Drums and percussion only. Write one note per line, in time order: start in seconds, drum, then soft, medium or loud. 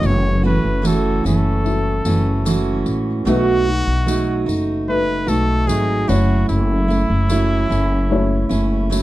0.03 tambourine soft
0.85 tambourine medium
1.26 tambourine soft
1.66 tambourine soft
2.05 tambourine soft
2.46 tambourine medium
2.86 tambourine soft
3.27 tambourine soft
4.08 tambourine medium
4.49 tambourine soft
5.28 tambourine medium
5.69 tambourine medium
6.09 tambourine soft
6.49 tambourine soft
6.90 tambourine soft
7.30 tambourine medium
7.72 tambourine soft
8.51 tambourine soft
8.92 tambourine medium